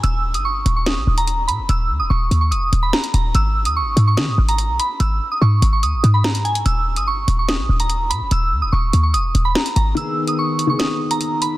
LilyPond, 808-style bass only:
\new Staff \with { instrumentName = "808-style bass" } { \clef bass \time 4/4 \key gis \minor \tempo 4 = 145 dis,,8. g,,8. dis,,8. ais,,16 dis,,4 ais,16 dis,,16 | dis,,8 dis,16 dis,,16 dis,,8 dis,8 e,,8 dis,,8 r8 dis,,8 | gis,,8. dis,16. gis,,16. gis,8 dis16 gis,16 gis,,8. b,,16 r8 | gis,,8 r8 gis,8 gis,,8 dis,16 gis,,16 gis,4. |
dis,,8. g,,8. dis,,8. ais,,16 dis,,4 ais,16 dis,,16 | dis,,8 dis,16 dis,,16 dis,,8 dis,8 e,,8 dis,,8 r8 gis,,8 | r1 | }